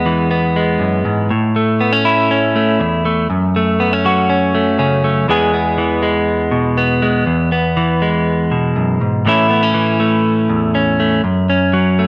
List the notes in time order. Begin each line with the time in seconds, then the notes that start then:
Already playing: E2 G#3 B3
0.06 E3
0.31 B3
0.56 G#3
0.80 F#2
1.05 G#2
1.30 A2
1.56 A3
1.81 B3
1.93 C#4
2.05 E4
2.31 C#4
2.56 A3
2.80 E2, muted clean electric guitar stroke
3.05 A3
3.30 F#2
3.56 A3
3.80 B3
3.93 C#4
4.05 F#3 F#4
4.30 C#4
4.55 A3
4.79 C#3 C#4
5.04 A3
5.28 E2 E3 G#3 B3 G#4
5.54 B3
5.78 E3
6.03 G#3
6.51 B2
6.78 B3
7.02 G#3
7.26 E2
7.52 B3
7.77 E3
8.02 G#3
8.51 B2
8.76 F#2
9.01 G#2
9.25 A2 E3 A3 C#4 E4
9.50 B3
9.63 C#4
9.74 E3
10.00 A3
10.49 E2
10.75 C#4
11.00 A3
11.24 F#2
11.50 C#4
11.73 F#3
11.99 A3